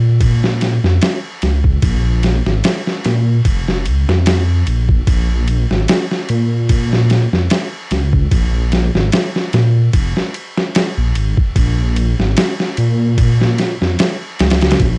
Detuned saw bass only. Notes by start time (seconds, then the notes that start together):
Already playing: A#2
0.84 F2
1.43 C#2
1.83 A#1
2.46 G#1
3.05 A#2
3.45 F1
3.86 C#2
4.09 F2
4.67 A#1
5.08 A#1
5.71 G#1
6.30 A#2
7.33 F2
7.91 C#2
8.32 A#1
8.95 G#1
9.54 A#2
9.94 F1
10.98 A#1
11.16 G#1
11.56 A#1
12.19 G#1
12.78 A#2
13.81 F2
14.40 C#2
14.80 A#1